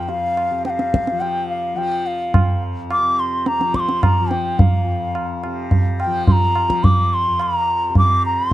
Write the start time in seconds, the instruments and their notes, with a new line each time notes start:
Already playing: tanpura F2 C3 F3
0.03 bansuri G5
0.09 bansuri F5, tabla tin
0.37 tabla na
0.51 tanpura C3
0.65 bansuri G5, tabla te
0.70 bansuri F5
0.79 tabla te
0.94 tabla ke
1.07 tabla te
1.12 tanpura F3
1.21 bansuri G5, tabla tin
1.49 bansuri F5
1.74 tanpura F3, bansuri G5, tabla tin
2.07 bansuri F5
2.34 tanpura F2, tabla na, tabla ge
2.90 bansuri D6, tabla na
2.98 tanpura C3
3.19 bansuri C6
3.46 bansuri A#5, tabla te
3.59 tanpura F3, tabla te
3.74 bansuri D6, tabla ke
3.80 bansuri C6
3.89 tabla te
4.03 bansuri A#5, tabla na, tabla ge
4.21 tanpura F3
4.30 bansuri G5, tabla te
4.59 bansuri F5, tabla tin, tabla ge
4.84 tanpura F2
5.15 tabla na
5.44 tanpura C3, tabla na
5.71 tabla tin, tabla ge
6.00 bansuri G5, tabla na
6.06 tanpura F3
6.27 bansuri C6, tabla tin, tabla ge
6.32 bansuri A#5
6.56 tabla na
6.68 tanpura F3, tabla ke
6.84 bansuri D6, tabla tin, tabla ge
7.14 bansuri C6
7.27 tanpura F2
7.40 bansuri A#5, tabla na
7.89 tanpura C3
7.95 bansuri D6, tabla tin, tabla ge
8.26 bansuri A#5
8.50 bansuri C6